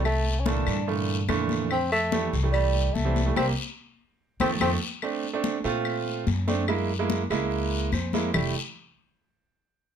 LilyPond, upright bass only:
\new Staff \with { instrumentName = "Upright bass" } { \clef bass \time 4/4 \key f \major \tempo 4 = 145 c,4. g,4. f,4~ | f,4. c,4. c,4 | c,8 r2 f,8 f,8 r8 | r4. bes,4. ges,4~ |
ges,4. des,4. f,4 | f,,8 r2. r8 | }